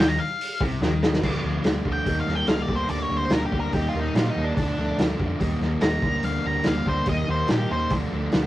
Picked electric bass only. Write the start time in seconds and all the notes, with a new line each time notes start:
Already playing: D#2
0.61 C2
0.81 D#2
1.22 D2
1.44 D2
1.65 D2
1.85 D2
2.06 D#2
2.27 D#2
2.48 C#2
2.68 D2
2.89 D2
3.10 D2
3.30 D2
3.53 D2
3.73 D#2
3.94 D#2
4.15 A#2
4.36 D#2
4.57 D2
4.77 D2
4.98 D2
5.20 F2
5.40 D#2
5.60 D#2
5.82 D#2
6.02 D2
6.23 D2
6.45 D2
6.66 D2
6.86 D2
7.07 D#2
7.28 D#2
7.50 A#2
7.71 D#2
7.91 D2
8.13 D2
8.33 D2